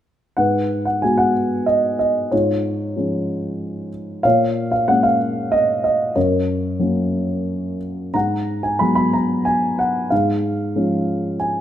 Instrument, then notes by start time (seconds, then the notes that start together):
grand piano
0.37 G#2 B4 F#5
0.85 F#5
1.02 G#3 B3 F#4 G#5
1.18 F#5
1.66 D#5
1.99 D#5
2.31 G#2 F4 C#5
2.96 F3 G#3 C#4
4.23 A#2 C#5 F5
4.72 F5
4.88 G#3 A#3 C#4 F#5
5.03 F5
5.52 D#5
5.84 D#5
6.16 F#2 A#4 C#5
6.79 F#3 A#3 C#4
8.14 G#2 F#5 A#5
8.63 G#5
8.79 F#3 G#3 B3 B5
8.95 B5
9.13 A#5
9.45 G#5
9.79 F#5
10.10 G#2 G#4 F5
10.75 F3 G#3 C#4
11.40 G#5